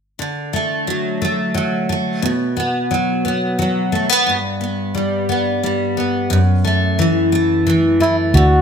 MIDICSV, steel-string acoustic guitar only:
0, 0, Header, 1, 2, 480
1, 0, Start_track
1, 0, Key_signature, 2, "major"
1, 0, Tempo, 680272
1, 129, Time_signature, 6, 3, 24, 8
1, 6079, End_track
2, 0, Start_track
2, 0, Title_t, "Steel-string acoustic guitar"
2, 0, Program_c, 0, 25
2, 134, Note_on_c, 0, 50, 42
2, 376, Note_on_c, 0, 57, 33
2, 616, Note_on_c, 0, 54, 37
2, 850, Note_off_c, 0, 57, 0
2, 858, Note_on_c, 0, 57, 36
2, 1087, Note_off_c, 0, 54, 0
2, 1090, Note_on_c, 0, 54, 36
2, 1327, Note_off_c, 0, 57, 0
2, 1335, Note_on_c, 0, 57, 34
2, 1567, Note_off_c, 0, 50, 0
2, 1569, Note_on_c, 0, 47, 50
2, 1618, Note_off_c, 0, 54, 0
2, 1621, Note_off_c, 0, 57, 0
2, 1811, Note_on_c, 0, 59, 33
2, 2052, Note_on_c, 0, 54, 37
2, 2289, Note_off_c, 0, 59, 0
2, 2292, Note_on_c, 0, 59, 39
2, 2522, Note_off_c, 0, 54, 0
2, 2531, Note_on_c, 0, 54, 41
2, 2765, Note_off_c, 0, 59, 0
2, 2768, Note_on_c, 0, 57, 37
2, 2889, Note_off_c, 0, 57, 0
2, 2889, Note_on_c, 0, 59, 31
2, 3009, Note_on_c, 0, 43, 51
2, 3010, Note_off_c, 0, 47, 0
2, 3057, Note_off_c, 0, 59, 0
2, 3058, Note_off_c, 0, 54, 0
2, 3251, Note_on_c, 0, 59, 35
2, 3490, Note_on_c, 0, 55, 39
2, 3724, Note_off_c, 0, 59, 0
2, 3732, Note_on_c, 0, 59, 38
2, 3967, Note_off_c, 0, 55, 0
2, 3976, Note_on_c, 0, 55, 39
2, 4205, Note_off_c, 0, 59, 0
2, 4213, Note_on_c, 0, 59, 38
2, 4442, Note_off_c, 0, 43, 0
2, 4445, Note_on_c, 0, 42, 57
2, 4499, Note_off_c, 0, 59, 0
2, 4500, Note_off_c, 0, 55, 0
2, 4689, Note_on_c, 0, 57, 38
2, 4930, Note_on_c, 0, 52, 43
2, 5164, Note_off_c, 0, 57, 0
2, 5167, Note_on_c, 0, 57, 44
2, 5400, Note_off_c, 0, 52, 0
2, 5409, Note_on_c, 0, 52, 43
2, 5645, Note_off_c, 0, 57, 0
2, 5648, Note_on_c, 0, 57, 39
2, 5885, Note_on_c, 0, 50, 60
2, 5886, Note_off_c, 0, 42, 0
2, 5936, Note_off_c, 0, 52, 0
2, 5936, Note_off_c, 0, 57, 0
2, 6079, Note_off_c, 0, 50, 0
2, 6079, End_track
0, 0, End_of_file